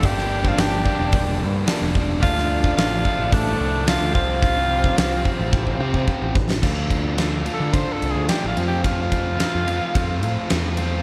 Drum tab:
CC |----------------|----------------|----------------|x---------------|
RD |----------------|----------------|----------------|--x-x-x-x-x-x-x-|
HH |o---o---o---o---|o---o---o---o---|o---o-----------|----------------|
SD |-o--o-------o---|-o--o-------o---|----o----------o|----o-------o---|
BD |o--o--o-o-----o-|o--o--o-o-----o-|o--o--o-oo-oo-o-|o-o-----o-------|

CC |----------------|
RD |x-x-x-x-x-x-x-x-|
HH |----------------|
SD |----o-------o---|
BD |o-o-----o-------|